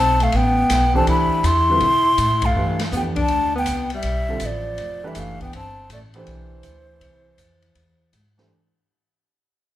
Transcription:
Already playing: upright bass B1, alto saxophone C4, flute A5
0.20 alto saxophone A3, flute F5, ride
0.32 upright bass A1, alto saxophone B3, flute G5, ride
0.70 upright bass B1, snare, hi-hat pedal, ride
0.94 grand piano E3 A3 D4 G4 C5, alto saxophone C4, flute A5, kick
1.07 upright bass C2, alto saxophone E4, flute B5, ride
1.31 muted upright bass stroke
1.41 upright bass E2, alto saxophone E4, hi-hat pedal, ride
1.46 flute C6
1.69 grand piano D3 G3 C4 F4 B4
1.80 upright bass B2, ride
2.18 upright bass A2, hi-hat pedal, ride
2.42 alto saxophone A3, flute F5, kick, ride
2.56 upright bass G2, grand piano E3 A3 D4 G4 B4
2.79 snare, ride
2.92 upright bass F2, grand piano E3 A3 D4 G4 B4, alto saxophone B3, hi-hat pedal
2.97 flute G5
3.16 alto saxophone D4, kick, ride
3.21 flute A5
3.28 upright bass D2, ride
3.55 alto saxophone B3, flute G5
3.66 upright bass C2, hi-hat pedal, ride
3.90 alto saxophone G3, ride
3.95 flute E5
4.03 upright bass B1, ride
4.29 grand piano D3 G3 C4 F4 A4
4.40 upright bass A1, alto saxophone F3, hi-hat pedal, ride
4.46 flute D5
4.78 upright bass F1, ride
5.03 grand piano E3 A3 D4 G4 B4, alto saxophone G3
5.08 flute E5
5.15 upright bass F#1, alto saxophone A3, hi-hat pedal, ride
5.19 flute F5
5.40 alto saxophone B3, flute G5, kick, ride
5.53 upright bass G1, alto saxophone C4, flute A5, ride
5.89 upright bass A1, alto saxophone A3, hi-hat pedal, ride
5.93 flute D5
6.14 grand piano E3 A3 D4 G4 C5, alto saxophone E3, ride
6.19 flute C5
6.27 upright bass B1, ride
6.63 upright bass D2, hi-hat pedal, ride
7.01 upright bass C2, ride
7.38 upright bass F2, hi-hat pedal, ride
7.62 ride
7.75 upright bass E2, ride
8.13 upright bass G#2, hi-hat pedal, ride
8.38 grand piano E3 A3 D4 G4 C5, snare

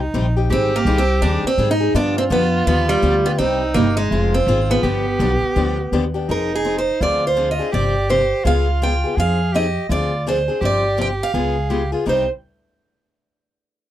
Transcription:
Already playing: upright bass C2
0.00 soprano saxophone D#4
0.14 upright bass A#1, steel-string acoustic guitar C3 G3 C4 D#4 G4
0.37 steel-string acoustic guitar C4 D#4 G4
0.50 upright bass G#1, steel-string acoustic guitar D#3 G3 C4 D#4 G#4, soprano saxophone G4
0.76 steel-string acoustic guitar A#3
0.85 upright bass C2, steel-string acoustic guitar D#3 G3 C4 D#4 G#4
0.98 steel-string acoustic guitar C4
1.22 upright bass D#2, steel-string acoustic guitar D#3 G3 C4 D4 D#4 G#4
1.44 steel-string acoustic guitar C4, muted upright bass stroke
1.58 upright bass G#2, steel-string acoustic guitar D#3 G3 C4 D#4 G#4
1.71 steel-string acoustic guitar D#4
1.80 steel-string acoustic guitar C4 D#4 G#4
1.94 upright bass G2, steel-string acoustic guitar D3 F3 B3 D4 G4, soprano saxophone F4
2.18 steel-string acoustic guitar C4
2.30 upright bass F2, steel-string acoustic guitar D3 F3 B3 D4 G4
2.67 upright bass D#2, steel-string acoustic guitar D3 F3 B3 D4 G4
2.89 steel-string acoustic guitar G3
3.02 upright bass D2, steel-string acoustic guitar D3 F3 B3 D4 G4
3.25 steel-string acoustic guitar B3 D4 G4
3.38 upright bass C2, steel-string acoustic guitar C3 G3 C4 D#4 G4, soprano saxophone D#4
3.74 upright bass G1, steel-string acoustic guitar C3 G3 A#3 C4 D#4 G4
3.97 steel-string acoustic guitar G#3
4.11 upright bass F1, steel-string acoustic guitar F3 C4 F4 G#4, soprano saxophone F4
4.34 steel-string acoustic guitar C4
4.46 upright bass G#1, steel-string acoustic guitar F3 C4 F4 G#4
4.70 steel-string acoustic guitar B3 C4 F4 G#4
4.83 upright bass G1, steel-string acoustic guitar D3 F3 B3 D4 G4, soprano saxophone G4
5.19 upright bass B1, steel-string acoustic guitar D3 F3 B3 D4 G4
5.42 muted upright bass stroke
5.56 upright bass D2, steel-string acoustic guitar D3 F3 B3 D4 G4
5.92 upright bass D#2, steel-string acoustic guitar D3 F3 B3 D4 G4
6.14 steel-string acoustic guitar B3 D4 G4
6.28 upright bass F1, steel-string acoustic guitar F3 C4 D#4 G#4 A#4, soprano saxophone D#4
6.55 steel-string acoustic guitar G#4
6.65 steel-string acoustic guitar F3 C4 D#4 G#4
6.78 steel-string acoustic guitar C5
7.01 upright bass D2, steel-string acoustic guitar D3 F3 C4 D4 G#4 D5, soprano saxophone F4
7.27 steel-string acoustic guitar C5
7.36 steel-string acoustic guitar D3 F3 C4 D4 G#4
7.51 steel-string acoustic guitar D#5
7.59 steel-string acoustic guitar C4 D4 G#4
7.72 upright bass G1, steel-string acoustic guitar C3 F3 C4 D4 G4 D5, soprano saxophone G4
8.09 steel-string acoustic guitar C3 F3 C4 D4 G4 C5
8.44 upright bass C#2, steel-string acoustic guitar C#3 G#3 B3 F4 G#4 F5, soprano saxophone F4
8.82 steel-string acoustic guitar C#3 G#3 B3 F4 G#4 G5
9.04 steel-string acoustic guitar B3 F4 G#4
9.16 upright bass F2, steel-string acoustic guitar F3 C4 D#4 G#4 F5, soprano saxophone G#4
9.52 steel-string acoustic guitar F3 C4 D#4 G#4 D#5, soprano saxophone G4
9.89 upright bass D2, steel-string acoustic guitar D3 F3 C4 D4 G#4 D5, soprano saxophone F4
10.27 steel-string acoustic guitar D3 F3 C4 D4 G#4 C5
10.48 steel-string acoustic guitar C4 D4 G#4
10.61 upright bass G1, steel-string acoustic guitar C3 F3 C4 D4 G4, soprano saxophone G4
10.65 steel-string acoustic guitar D5
10.97 steel-string acoustic guitar C3 F3 C4 D4 G4
11.01 steel-string acoustic guitar G5
11.23 steel-string acoustic guitar F5
11.34 upright bass C#2, steel-string acoustic guitar C#3 G#3 B3 F4 G#4, soprano saxophone G#4
11.70 steel-string acoustic guitar C#3 G#3 B3 F4 G#4, soprano saxophone G4
11.92 steel-string acoustic guitar B3 F4 G#4, soprano saxophone F4
12.06 upright bass C2, steel-string acoustic guitar C3 G3 C4 D#4 G4 C5, soprano saxophone D#4

